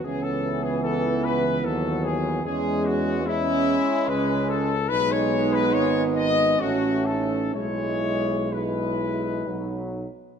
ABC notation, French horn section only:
X:1
M:3/4
L:1/8
Q:1/4=73
K:C#m
V:1 name="French horn section"
B,6 | C2 C4 | D4 C D | E2 E2 D z |]